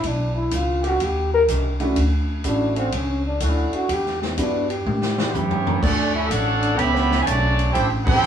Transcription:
0.03 0.50 B1 medium
0.03 0.35 D4 loud
0.03 kick soft
0.03 ride medium
0.36 0.57 E4 loud
0.51 0.98 C#2 medium
0.51 0.85 F4 loud
0.51 kick soft
0.51 hi-hat pedal medium
0.51 ride medium
0.82 0.94 D#3 medium
0.82 0.94 A3 medium
0.82 0.94 C#4 medium
0.82 0.93 G4 loud
0.82 ride soft
0.86 1.05 F#4 loud
1.00 1.46 D#2 medium
1.00 kick soft
1.00 ride medium
1.04 1.33 G4 loud
1.34 1.43 A#4 loud
1.48 1.95 C2 medium
1.48 1.70 D#3 medium
1.48 1.70 A3 medium
1.48 1.70 C#4 medium
1.48 1.70 G4 medium
1.48 kick soft
1.48 hi-hat pedal medium
1.48 ride medium
1.80 1.94 A3 medium
1.80 1.94 C#4 medium
1.80 1.95 D4 medium
1.80 1.95 E4 medium
1.80 1.95 F#4 medium
1.80 ride soft
1.96 2.43 D2 medium
1.96 kick soft
1.96 ride medium
2.44 2.91 A1 medium
2.44 2.73 A3 medium
2.44 2.73 C#4 medium
2.44 2.73 D4 medium
2.44 2.80 D4 loud
2.44 2.73 E4 medium
2.44 2.73 F#4 medium
2.44 kick soft
2.44 hi-hat pedal medium
2.44 ride medium
2.76 2.87 D3 medium
2.76 2.87 A3 medium
2.76 2.98 C4 loud
2.76 2.87 C#4 medium
2.76 2.87 F#4 medium
2.76 ride soft
2.92 3.39 C#2 medium
2.92 kick soft
2.92 ride medium
2.97 3.26 C#4 medium
3.27 3.46 D4 loud
3.40 3.70 D2 loud
3.40 3.89 D3 loud
3.40 3.89 A3 medium
3.40 3.89 C#4 medium
3.40 3.89 F#4 loud
3.40 kick soft
3.40 hi-hat pedal medium
3.40 ride medium
3.44 3.74 E4 medium
3.73 3.93 F#4 loud
3.73 ride soft
3.89 4.36 E2 medium
3.89 4.22 G4 loud
3.89 kick soft
3.89 ride medium
4.06 snare soft
4.22 4.39 B3 medium
4.22 snare medium
4.37 4.84 G2 medium
4.37 4.66 G3 medium
4.37 4.66 B3 medium
4.37 4.66 D4 medium
4.37 4.69 D4 medium
4.37 4.66 E4 medium
4.37 4.66 F#4 medium
4.37 kick soft
4.37 hi-hat pedal medium
4.37 ride medium
4.70 5.70 G4 loud
4.70 ride medium
4.85 5.32 A2 medium
4.85 high tom medium
5.02 snare medium
5.16 5.28 C#3 medium
5.16 5.28 G3 medium
5.16 5.28 B3 medium
5.16 5.28 F#4 loud
5.16 snare medium
5.30 5.80 F#2 medium
5.30 5.82 E3 medium
5.30 5.82 C#4 medium
5.30 5.82 G4 medium
5.30 5.34 C5 medium
5.35 5.83 B3 medium
5.35 5.83 E4 medium
5.35 5.82 G4 medium
5.35 5.83 C#5 loud
5.35 floor tom medium
5.35 hi-hat pedal medium
5.51 floor tom medium
5.67 floor tom medium
5.81 6.29 D2 loud
5.81 6.13 F#3 medium
5.81 7.17 A3 loud
5.81 6.14 A3 medium
5.81 6.13 C#4 medium
5.81 7.16 D4 loud
5.81 6.14 D4 loud
5.81 6.14 F#4 medium
5.81 7.16 A4 loud
5.81 7.17 C#5 loud
5.81 6.14 D5 loud
5.81 kick medium
5.81 crash loud
6.13 6.25 C#4 medium
6.13 6.24 E4 medium
6.13 6.25 F#4 medium
6.13 6.25 A4 medium
6.13 6.25 E5 loud
6.28 6.77 A1 loud
6.28 6.78 A3 medium
6.28 6.77 D4 medium
6.28 6.78 F#4 medium
6.28 6.31 E5 medium
6.28 kick soft
6.28 hi-hat pedal medium
6.28 ride medium
6.32 6.79 D4 medium
6.32 6.79 A4 medium
6.32 6.77 C#5 loud
6.32 6.79 F#5 loud
6.63 ride medium
6.75 7.25 C#2 loud
6.75 7.20 B3 loud
6.75 7.22 G4 loud
6.75 7.22 C#5 loud
6.75 7.22 E5 loud
6.75 7.22 B5 loud
6.75 kick soft
6.75 ride medium
6.95 snare soft
7.11 snare medium
7.22 7.74 C#3 medium
7.22 7.74 F#3 medium
7.22 7.74 A3 medium
7.22 7.26 G#5 medium
7.26 7.73 B1 medium
7.26 7.74 F#4 loud
7.26 7.74 C#5 loud
7.26 7.75 D5 loud
7.26 7.75 A5 loud
7.26 kick soft
7.26 hi-hat pedal medium
7.26 ride medium
7.59 ride medium
7.72 8.21 A1 loud
7.72 7.87 C4 loud
7.72 7.87 E4 medium
7.72 7.88 E4 medium
7.72 7.87 G4 loud
7.72 7.88 A4 medium
7.72 7.88 C5 medium
7.72 7.88 G5 loud
7.72 kick soft
7.72 ride medium
8.04 8.17 E3 medium
8.04 8.18 A3 medium
8.04 8.26 C4 medium
8.04 8.17 C4 medium
8.04 8.26 E4 medium
8.04 8.26 E4 loud
8.04 8.26 G4 loud
8.04 8.18 G4 loud
8.04 8.26 A4 loud
8.04 8.26 C5 loud
8.04 8.26 G5 loud
8.04 kick loud
8.04 crash loud
8.22 8.26 C2 loud

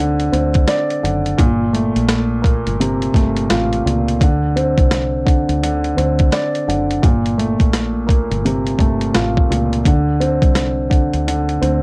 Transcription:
0.00 0.29 D2 medium
0.00 1.03 D3 medium
0.00 0.31 C4 medium
0.20 closed hi-hat soft
0.32 0.65 D2 loud
0.32 1.38 C4 medium
0.32 closed hi-hat medium
0.54 kick loud
0.54 closed hi-hat medium
0.68 1.38 D5 medium
0.68 snare loud
0.68 closed hi-hat loud
0.90 closed hi-hat soft
1.03 1.36 F#1 loud
1.03 1.38 D3 medium
1.03 closed hi-hat medium
1.26 closed hi-hat medium
1.38 1.92 G1 loud
1.38 2.79 A#2 loud
1.38 kick loud
1.38 closed hi-hat loud
1.73 3.14 A3 medium
1.73 closed hi-hat medium
1.96 2.62 A#1 medium
1.96 closed hi-hat medium
2.09 snare loud
2.09 closed hi-hat loud
2.42 3.84 A#3 medium
2.42 kick loud
2.42 closed hi-hat medium
2.67 3.11 G1 medium
2.67 closed hi-hat medium
2.80 4.21 C3 medium
2.80 closed hi-hat medium
3.02 closed hi-hat soft
3.14 3.47 G1 medium
3.14 4.21 A3 medium
3.14 kick medium
3.14 snare soft
3.14 closed hi-hat medium
3.37 closed hi-hat medium
3.50 3.83 A1 loud
3.50 4.20 F4 medium
3.50 snare loud
3.50 closed hi-hat loud
3.73 closed hi-hat soft
3.86 4.18 C#2 medium
3.86 4.21 A#2 medium
3.86 closed hi-hat medium
4.08 closed hi-hat medium
4.21 4.74 D2 loud
4.21 5.24 D3 medium
4.21 kick loud
4.21 closed hi-hat loud
4.56 5.96 C4 medium
4.56 closed hi-hat medium
4.78 5.44 C2 medium
4.78 kick loud
4.78 closed hi-hat medium
4.91 snare loud
4.91 closed hi-hat loud
5.25 5.61 D3 medium
5.25 kick loud
5.25 closed hi-hat medium
5.49 5.93 D2 medium
5.49 closed hi-hat medium
5.63 6.66 D3 medium
5.63 closed hi-hat medium
5.84 closed hi-hat soft
5.97 6.30 D2 loud
5.97 7.03 C4 medium
5.97 closed hi-hat medium
6.19 kick loud
6.19 closed hi-hat medium
6.32 7.03 D5 medium
6.32 snare loud
6.32 closed hi-hat loud
6.55 closed hi-hat soft
6.68 7.00 F#1 loud
6.68 7.03 D3 medium
6.68 closed hi-hat medium
6.91 closed hi-hat medium
7.02 7.56 G1 loud
7.02 8.44 A#2 medium
7.02 kick loud
7.02 closed hi-hat loud
7.26 closed hi-hat soft
7.38 8.79 A3 medium
7.38 closed hi-hat medium
7.60 8.27 A#1 medium
7.60 kick loud
7.60 closed hi-hat medium
7.73 snare loud
7.73 closed hi-hat loud
8.07 9.49 A#3 medium
8.07 kick loud
8.07 closed hi-hat medium
8.31 8.76 G1 medium
8.31 closed hi-hat medium
8.45 9.86 C3 medium
8.45 closed hi-hat medium
8.67 closed hi-hat soft
8.79 9.12 G1 medium
8.79 9.86 A3 medium
8.79 kick medium
8.79 closed hi-hat medium
9.01 closed hi-hat medium
9.14 9.47 A1 loud
9.14 9.85 F4 medium
9.14 snare loud
9.14 closed hi-hat loud
9.37 kick medium
9.50 9.83 C#2 medium
9.50 9.85 A#2 medium
9.50 closed hi-hat medium
9.73 closed hi-hat medium
9.85 10.39 D2 loud
9.85 10.88 D3 medium
9.85 kick loud
9.85 closed hi-hat loud
10.20 11.60 C4 medium
10.20 closed hi-hat medium
10.42 11.09 C2 medium
10.42 kick loud
10.42 closed hi-hat medium
10.55 snare loud
10.55 closed hi-hat loud
10.90 11.26 D3 medium
10.90 kick loud
10.90 closed hi-hat medium
11.13 11.58 D2 medium
11.13 closed hi-hat medium
11.28 11.83 D3 medium
11.28 closed hi-hat loud
11.49 closed hi-hat soft
11.62 11.83 D2 loud
11.62 11.83 C4 medium
11.62 closed hi-hat medium

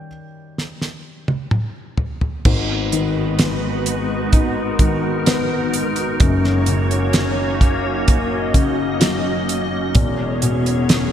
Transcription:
0.00 2.47 D#3 soft
0.00 2.48 G3 soft
0.00 2.48 C#4 soft
0.00 1.48 G5 medium
0.58 snare soft
0.82 snare soft
1.28 high tom medium
1.51 mid tom medium
1.98 floor tom medium
2.21 floor tom medium
2.45 6.17 G#1 medium
2.45 6.17 G#2 medium
2.45 6.17 G#3 medium
2.45 6.17 B3 medium
2.45 9.92 D#4 medium
2.45 6.17 F#4 medium
2.45 4.31 B4 medium
2.45 kick loud
2.45 crash medium
2.92 4.76 D#3 soft
2.92 closed hi-hat medium
3.39 snare loud
3.39 closed hi-hat medium
3.86 closed hi-hat medium
4.33 6.17 D#4 medium
4.33 6.19 A#4 medium
4.33 kick medium
4.33 closed hi-hat medium
4.79 6.17 D#3 soft
4.79 kick medium
4.79 closed hi-hat medium
5.26 6.18 B3 medium
5.26 snare medium
5.26 closed hi-hat medium
5.74 closed hi-hat medium
5.96 closed hi-hat soft
6.20 9.92 F#1 medium
6.20 9.92 F#2 medium
6.20 9.92 A#3 medium
6.20 11.12 C#4 medium
6.20 9.92 F#4 medium
6.20 8.06 C#5 medium
6.20 kick loud
6.20 closed hi-hat medium
6.44 snare soft
6.66 8.51 C#3 soft
6.66 closed hi-hat medium
6.91 closed hi-hat soft
7.13 snare loud
7.13 closed hi-hat medium
7.61 kick medium
7.61 closed hi-hat medium
8.07 9.91 A#3 medium
8.07 9.94 D#5 medium
8.07 kick medium
8.07 closed hi-hat medium
8.54 9.91 C#3 medium
8.54 kick medium
8.54 closed hi-hat medium
9.00 9.92 F#3 medium
9.00 snare loud
9.00 closed hi-hat medium
9.49 closed hi-hat medium
9.95 11.12 E1 medium
9.95 11.12 E2 medium
9.95 11.12 B3 medium
9.95 11.12 E4 medium
9.95 11.12 G#4 medium
9.95 11.12 C#5 medium
9.95 kick loud
9.95 closed hi-hat loud
10.42 11.12 B2 medium
10.42 closed hi-hat medium
10.66 closed hi-hat soft
10.89 snare loud
10.89 closed hi-hat medium

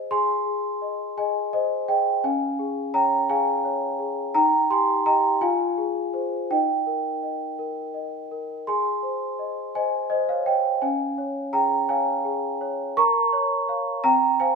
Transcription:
0.00 0.11 G#4 soft
0.00 0.12 C5 soft
0.00 0.12 D#5 soft
0.11 0.45 G#4 medium
0.11 1.14 G#5 medium
0.11 1.17 C6 medium
0.46 1.03 G#4 soft
0.82 1.17 D#5 soft
1.17 1.74 G#4 soft
1.17 1.51 D#5 medium
1.17 1.53 G#5 medium
1.53 1.86 C5 medium
1.53 1.88 D#5 medium
1.88 2.23 G#4 soft
1.88 2.21 D#5 medium
1.88 2.23 G5 medium
2.24 4.31 C#4 medium
2.24 2.90 F5 medium
2.24 2.94 G#5 medium
2.59 3.15 G#4 soft
2.94 3.50 C#5 medium
2.94 3.27 G5 medium
2.94 3.29 A#5 medium
3.30 3.85 G#4 medium
3.30 4.31 F5 medium
3.30 4.35 G#5 loud
3.64 4.21 C#5 medium
3.99 4.34 G#4 soft
4.35 5.38 D#4 medium
4.35 4.68 G5 medium
4.35 4.70 A#5 loud
4.70 5.05 G4 soft
4.70 5.04 G#5 medium
4.70 5.06 C6 loud
5.06 5.38 G4 soft
5.06 5.38 D#5 medium
5.06 5.40 G5 medium
5.06 5.42 A#5 medium
5.41 6.46 F4 medium
5.41 6.46 F5 medium
5.41 6.50 G#5 medium
5.78 6.12 G#4 medium
6.13 6.46 G#4 soft
6.13 6.46 C5 soft
6.51 8.64 D#4 medium
6.51 7.21 D#5 medium
6.51 8.32 G5 medium
6.87 7.45 A#4 soft
7.23 7.81 D#5 soft
7.59 8.17 A#4 soft
7.94 8.53 D#5 soft
8.31 8.68 A#4 soft
8.67 10.78 G#4 medium
8.67 9.72 G#5 medium
8.67 9.75 C6 medium
9.03 9.60 C5 soft
9.39 9.75 D#5 soft
9.75 10.10 C5 soft
9.75 10.09 D#5 medium
9.75 10.11 G#5 medium
10.10 10.28 C5 medium
10.10 10.28 D#5 medium
10.29 10.46 C#5 medium
10.29 10.47 F5 medium
10.46 10.82 C5 soft
10.46 10.80 D#5 medium
10.46 10.82 G5 medium
10.82 12.93 C#4 medium
10.82 11.50 F5 medium
10.82 11.53 G#5 medium
11.18 11.75 C#5 soft
11.53 12.10 G#4 soft
11.53 11.87 G5 medium
11.53 11.89 A#5 medium
11.89 12.46 C#5 medium
11.89 12.93 F5 medium
11.89 12.97 G#5 medium
12.25 12.82 G#4 medium
12.61 12.97 C#5 medium
12.97 14.00 A#4 medium
12.97 14.00 A#5 medium
12.97 14.03 C#6 loud
13.33 13.67 C#5 medium
13.68 14.00 C#5 medium
13.68 14.00 F5 medium
14.04 14.55 C4 medium
14.04 14.38 G5 medium
14.04 14.39 A#5 loud
14.40 14.55 C5 medium
14.40 14.55 F5 medium
14.40 14.55 G#5 loud

